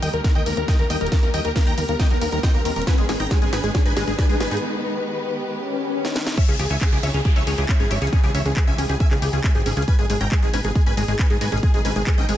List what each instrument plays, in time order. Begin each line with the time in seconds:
Already playing: string section D#3 G3 A#3 G4 A#4, riser
0.02 analog synth bass D#2, acid bass D#3, supersaw synth D#5 G5, open hi-hat
0.13 analog synth bass D#2, acid bass D#3, supersaw synth A#4, closed hi-hat
0.24 acid bass A#3, supersaw synth A#4, kick, snare, closed hi-hat
0.35 analog synth bass D#2, acid bass D#3, supersaw synth D#5 G5, closed hi-hat
0.46 analog synth bass D#2, acid bass D#3, supersaw synth A#4, open hi-hat
0.57 analog synth bass D#2, acid bass A#3, supersaw synth A#4, closed hi-hat
0.68 acid bass D#3, supersaw synth D#5 G5, kick, snare, closed hi-hat
0.79 analog synth bass D#2, acid bass D#3, supersaw synth A#4, closed hi-hat
0.90 analog synth bass D#2, acid bass A#3, supersaw synth D#5 G5, open hi-hat
1.01 analog synth bass D#1, acid bass D#3, supersaw synth A#4, closed hi-hat
1.06 closed hi-hat
1.12 acid bass D#3, supersaw synth A#4, kick, snare, closed hi-hat
1.23 analog synth bass D#2, acid bass A#3, supersaw synth A#4, closed hi-hat
1.34 analog synth bass D#2, acid bass D#3, supersaw synth D#5 G5, open hi-hat
1.45 analog synth bass D#2, acid bass D#3, supersaw synth A#4, closed hi-hat
1.56 acid bass A#3, supersaw synth A#4, kick, snare, closed hi-hat
1.67 analog synth bass D#2, acid bass D#3, supersaw synth G5 A#5, closed hi-hat
1.78 analog synth bass D#2, acid bass D#3, supersaw synth A#4, open hi-hat
1.89 analog synth bass D#2, acid bass A#3, supersaw synth A#4, closed hi-hat
2.00 acid bass D#3, supersaw synth D#5 G5, kick, snare, closed hi-hat
2.10 analog synth bass D#2, acid bass D#3, supersaw synth A#4, closed hi-hat
2.21 analog synth bass D#2, acid bass A#3, supersaw synth A#4, open hi-hat
2.32 analog synth bass D#2, acid bass D#3, supersaw synth A#4, closed hi-hat
2.43 acid bass D#3, supersaw synth D#5 G5, kick, snare, open hi-hat
2.54 analog synth bass D#2, acid bass A#3, supersaw synth A#4, closed hi-hat
2.65 analog synth bass D#2, acid bass D#3, supersaw synth A#4, open hi-hat
2.76 analog synth bass D#1, acid bass D#3, supersaw synth A#4, closed hi-hat
2.82 closed hi-hat
2.87 string section D#3 G#3 B3 G#4 B4, acid bass D#4, supersaw synth B4 G#5, kick, snare, closed hi-hat
2.98 analog synth bass G#1, acid bass G#3, supersaw synth G#4, closed hi-hat
3.09 analog synth bass G#1, acid bass G#3, supersaw synth G#4, snare, open hi-hat
3.20 analog synth bass G#1, acid bass D#4, supersaw synth G5 A#5, closed hi-hat
3.31 acid bass G#3, supersaw synth G#4, kick, snare, closed hi-hat
3.42 analog synth bass G#1, acid bass G#3, supersaw synth G#4, closed hi-hat
3.53 analog synth bass G#1, acid bass D#4, supersaw synth B4 G#5, snare, open hi-hat
3.64 analog synth bass G#1, acid bass G#3, supersaw synth G#4, closed hi-hat
3.75 acid bass G#3, supersaw synth G#4, kick, snare, closed hi-hat
3.86 analog synth bass G#1, acid bass D#4, supersaw synth B4 G#5, closed hi-hat
3.97 analog synth bass G#1, acid bass G#3, supersaw synth G#4, snare, open hi-hat
4.08 analog synth bass G#1, acid bass G#3, supersaw synth G#4, closed hi-hat
4.18 acid bass D#4, supersaw synth B4 G#5, kick, snare, closed hi-hat
4.29 analog synth bass G#1, acid bass G#3, supersaw synth G#4, closed hi-hat
4.40 analog synth bass G#1, acid bass G#3, supersaw synth B4 G#5, snare, open hi-hat
4.51 analog synth bass G#2, acid bass D#4, supersaw synth G#4, closed hi-hat
4.57 closed hi-hat
4.62 string section G4
5.50 swell
6.05 snare
6.16 snare
6.27 snare
6.37 string section C#3 E3 G#3 E4 G#4, acid bass C#4, supersaw synth C#5 E5, kick, closed hi-hat, crash, downlifter
6.48 analog synth bass C#2, acid bass C#4, supersaw synth G#4, closed hi-hat
6.59 analog synth bass C#2, acid bass G4, supersaw synth G#4, open hi-hat
6.70 analog synth bass C#2, acid bass C#4, supersaw synth E5 G#5, closed hi-hat
6.81 acid bass C#4, supersaw synth G#4, kick, clap, closed hi-hat
6.92 analog synth bass C#2, acid bass G4, supersaw synth G#4, closed hi-hat
7.03 analog synth bass C#2, acid bass C#4, supersaw synth C#5 E5, open hi-hat
7.14 analog synth bass C#2, acid bass C#4, supersaw synth G#4, closed hi-hat
7.25 acid bass G4, supersaw synth G#4, kick, closed hi-hat
7.36 analog synth bass C#2, acid bass C#4, supersaw synth C#5 E5, closed hi-hat
7.47 analog synth bass C#2, acid bass C#4, supersaw synth G#4, open hi-hat
7.58 analog synth bass C#2, acid bass G4, supersaw synth G#4, closed hi-hat
7.69 acid bass C#4, supersaw synth C#5 E5, kick, clap, closed hi-hat
7.80 analog synth bass G#1, acid bass C#4, supersaw synth G#4, closed hi-hat
7.91 analog synth bass G#1, acid bass G4, supersaw synth C#5 E5, open hi-hat
8.02 analog synth bass C#2, acid bass C#4, supersaw synth G#4, closed hi-hat
8.07 closed hi-hat
8.13 acid bass C#4, string section G4, supersaw synth G#4, kick, closed hi-hat
8.24 analog synth bass C#2, acid bass G4, supersaw synth G#4, closed hi-hat
8.35 analog synth bass C#2, acid bass C#4, supersaw synth C#5 E5, open hi-hat
8.45 analog synth bass C#2, acid bass C#4, supersaw synth G#4, closed hi-hat
8.56 acid bass G4, supersaw synth G#4, kick, clap, closed hi-hat
8.67 analog synth bass C#2, acid bass C#4, supersaw synth E5 G#5, closed hi-hat
8.78 analog synth bass C#2, acid bass C#4, supersaw synth G#4, open hi-hat
8.89 analog synth bass C#2, acid bass G4, supersaw synth G#4, closed hi-hat
9.00 acid bass C#4, supersaw synth E5 G#5, kick, closed hi-hat
9.11 analog synth bass C#2, acid bass C#4, supersaw synth G#4, clap, closed hi-hat
9.22 analog synth bass C#2, acid bass G4, supersaw synth G#4, open hi-hat
9.33 analog synth bass C#2, acid bass C#4, supersaw synth G#4, closed hi-hat
9.44 acid bass C#4, supersaw synth E5 G#5, kick, clap, open hi-hat
9.55 analog synth bass G#1, acid bass G4, supersaw synth G#4, closed hi-hat
9.66 analog synth bass G#1, acid bass C#4, supersaw synth G#4, open hi-hat
9.77 analog synth bass C#2, acid bass C#4, supersaw synth G#4, closed hi-hat
9.82 closed hi-hat
9.88 string section B2 D#3 D#4 G#4, acid bass C#4, supersaw synth B4 G#5, kick, closed hi-hat
9.99 analog synth bass G#1, acid bass G#3, supersaw synth G#4, closed hi-hat
10.10 analog synth bass G#1, acid bass G#3, supersaw synth G#4, open hi-hat
10.21 analog synth bass G#1, acid bass C#4, supersaw synth G5 A#5, closed hi-hat
10.32 acid bass G#3, supersaw synth G#4, kick, clap, closed hi-hat
10.43 analog synth bass G#1, acid bass G#3, supersaw synth G#4, closed hi-hat
10.54 analog synth bass G#1, acid bass C#4, supersaw synth B4 G#5, open hi-hat
10.64 analog synth bass G#1, acid bass G#3, supersaw synth G#4, closed hi-hat
10.75 acid bass G#3, supersaw synth G#4, kick, closed hi-hat
10.86 analog synth bass G#1, acid bass C#4, supersaw synth B4 G#5, closed hi-hat
10.97 analog synth bass G#1, acid bass G#3, supersaw synth G#4, open hi-hat
11.08 analog synth bass G#1, acid bass G#3, supersaw synth G#4, closed hi-hat
11.19 acid bass C#4, supersaw synth B4 G#5, kick, clap, closed hi-hat
11.30 analog synth bass G#2, acid bass G#3, supersaw synth G#4, closed hi-hat
11.41 analog synth bass G#2, acid bass G#3, supersaw synth B4 G#5, open hi-hat
11.52 analog synth bass G#1, acid bass C#4, supersaw synth G#4, closed hi-hat
11.58 closed hi-hat
11.63 acid bass G#3, supersaw synth G#4, kick, closed hi-hat
11.74 analog synth bass G#1, acid bass G#3, supersaw synth G#4, closed hi-hat
11.85 analog synth bass G#1, acid bass C#4, supersaw synth B4 G#5, open hi-hat
11.96 analog synth bass G#1, acid bass G#3, supersaw synth G#4, closed hi-hat
12.07 acid bass G#3, kick, clap, closed hi-hat
12.18 analog synth bass G#1, acid bass C#4, supersaw synth D#5 G5, closed hi-hat
12.29 analog synth bass G#1, acid bass G#3, supersaw synth G#4, open hi-hat